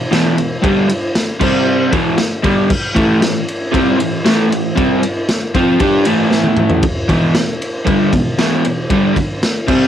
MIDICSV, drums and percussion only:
0, 0, Header, 1, 2, 480
1, 0, Start_track
1, 0, Key_signature, 1, "minor"
1, 0, Tempo, 517241
1, 586, Time_signature, 4, 2, 24, 8
1, 9165, End_track
2, 0, Start_track
2, 0, Title_t, "Drums"
2, 118, Note_on_c, 9, 38, 98
2, 118, Note_on_c, 9, 51, 95
2, 211, Note_off_c, 9, 38, 0
2, 211, Note_off_c, 9, 51, 0
2, 353, Note_on_c, 9, 51, 70
2, 446, Note_off_c, 9, 51, 0
2, 593, Note_on_c, 9, 36, 120
2, 595, Note_on_c, 9, 51, 104
2, 685, Note_off_c, 9, 36, 0
2, 688, Note_off_c, 9, 51, 0
2, 830, Note_on_c, 9, 51, 76
2, 922, Note_off_c, 9, 51, 0
2, 1071, Note_on_c, 9, 38, 101
2, 1071, Note_on_c, 9, 51, 101
2, 1163, Note_off_c, 9, 38, 0
2, 1163, Note_off_c, 9, 51, 0
2, 1306, Note_on_c, 9, 49, 102
2, 1308, Note_on_c, 9, 36, 94
2, 1398, Note_off_c, 9, 49, 0
2, 1401, Note_off_c, 9, 36, 0
2, 1787, Note_on_c, 9, 51, 83
2, 1788, Note_on_c, 9, 36, 114
2, 1879, Note_off_c, 9, 51, 0
2, 1881, Note_off_c, 9, 36, 0
2, 2022, Note_on_c, 9, 38, 111
2, 2022, Note_on_c, 9, 51, 101
2, 2115, Note_off_c, 9, 38, 0
2, 2115, Note_off_c, 9, 51, 0
2, 2265, Note_on_c, 9, 51, 85
2, 2267, Note_on_c, 9, 36, 105
2, 2357, Note_off_c, 9, 51, 0
2, 2360, Note_off_c, 9, 36, 0
2, 2506, Note_on_c, 9, 49, 104
2, 2509, Note_on_c, 9, 36, 106
2, 2598, Note_off_c, 9, 49, 0
2, 2601, Note_off_c, 9, 36, 0
2, 2749, Note_on_c, 9, 36, 104
2, 2750, Note_on_c, 9, 51, 87
2, 2842, Note_off_c, 9, 36, 0
2, 2843, Note_off_c, 9, 51, 0
2, 2991, Note_on_c, 9, 38, 119
2, 2991, Note_on_c, 9, 51, 111
2, 3083, Note_off_c, 9, 38, 0
2, 3083, Note_off_c, 9, 51, 0
2, 3233, Note_on_c, 9, 51, 76
2, 3326, Note_off_c, 9, 51, 0
2, 3471, Note_on_c, 9, 36, 107
2, 3475, Note_on_c, 9, 51, 96
2, 3564, Note_off_c, 9, 36, 0
2, 3568, Note_off_c, 9, 51, 0
2, 3711, Note_on_c, 9, 51, 79
2, 3804, Note_off_c, 9, 51, 0
2, 3951, Note_on_c, 9, 38, 109
2, 3951, Note_on_c, 9, 51, 93
2, 4044, Note_off_c, 9, 38, 0
2, 4044, Note_off_c, 9, 51, 0
2, 4197, Note_on_c, 9, 51, 76
2, 4290, Note_off_c, 9, 51, 0
2, 4432, Note_on_c, 9, 36, 108
2, 4432, Note_on_c, 9, 51, 97
2, 4524, Note_off_c, 9, 36, 0
2, 4525, Note_off_c, 9, 51, 0
2, 4668, Note_on_c, 9, 51, 75
2, 4761, Note_off_c, 9, 51, 0
2, 4906, Note_on_c, 9, 38, 116
2, 4906, Note_on_c, 9, 51, 97
2, 4999, Note_off_c, 9, 38, 0
2, 4999, Note_off_c, 9, 51, 0
2, 5147, Note_on_c, 9, 36, 109
2, 5147, Note_on_c, 9, 51, 72
2, 5240, Note_off_c, 9, 36, 0
2, 5240, Note_off_c, 9, 51, 0
2, 5380, Note_on_c, 9, 51, 108
2, 5385, Note_on_c, 9, 36, 104
2, 5473, Note_off_c, 9, 51, 0
2, 5477, Note_off_c, 9, 36, 0
2, 5615, Note_on_c, 9, 51, 78
2, 5708, Note_off_c, 9, 51, 0
2, 5859, Note_on_c, 9, 38, 60
2, 5952, Note_off_c, 9, 38, 0
2, 5974, Note_on_c, 9, 48, 68
2, 6067, Note_off_c, 9, 48, 0
2, 6094, Note_on_c, 9, 45, 99
2, 6187, Note_off_c, 9, 45, 0
2, 6215, Note_on_c, 9, 43, 99
2, 6308, Note_off_c, 9, 43, 0
2, 6336, Note_on_c, 9, 51, 112
2, 6340, Note_on_c, 9, 36, 112
2, 6429, Note_off_c, 9, 51, 0
2, 6433, Note_off_c, 9, 36, 0
2, 6581, Note_on_c, 9, 36, 84
2, 6583, Note_on_c, 9, 51, 82
2, 6674, Note_off_c, 9, 36, 0
2, 6676, Note_off_c, 9, 51, 0
2, 6819, Note_on_c, 9, 38, 107
2, 6819, Note_on_c, 9, 51, 105
2, 6912, Note_off_c, 9, 38, 0
2, 6912, Note_off_c, 9, 51, 0
2, 7069, Note_on_c, 9, 51, 72
2, 7162, Note_off_c, 9, 51, 0
2, 7302, Note_on_c, 9, 36, 122
2, 7304, Note_on_c, 9, 51, 100
2, 7395, Note_off_c, 9, 36, 0
2, 7397, Note_off_c, 9, 51, 0
2, 7543, Note_on_c, 9, 36, 81
2, 7544, Note_on_c, 9, 51, 81
2, 7636, Note_off_c, 9, 36, 0
2, 7637, Note_off_c, 9, 51, 0
2, 7784, Note_on_c, 9, 38, 97
2, 7784, Note_on_c, 9, 51, 94
2, 7876, Note_off_c, 9, 38, 0
2, 7876, Note_off_c, 9, 51, 0
2, 8025, Note_on_c, 9, 51, 70
2, 8118, Note_off_c, 9, 51, 0
2, 8261, Note_on_c, 9, 51, 103
2, 8262, Note_on_c, 9, 36, 115
2, 8353, Note_off_c, 9, 51, 0
2, 8355, Note_off_c, 9, 36, 0
2, 8504, Note_on_c, 9, 36, 81
2, 8507, Note_on_c, 9, 51, 80
2, 8596, Note_off_c, 9, 36, 0
2, 8600, Note_off_c, 9, 51, 0
2, 8750, Note_on_c, 9, 38, 112
2, 8750, Note_on_c, 9, 51, 99
2, 8843, Note_off_c, 9, 38, 0
2, 8843, Note_off_c, 9, 51, 0
2, 8987, Note_on_c, 9, 36, 98
2, 8988, Note_on_c, 9, 49, 102
2, 9079, Note_off_c, 9, 36, 0
2, 9081, Note_off_c, 9, 49, 0
2, 9165, End_track
0, 0, End_of_file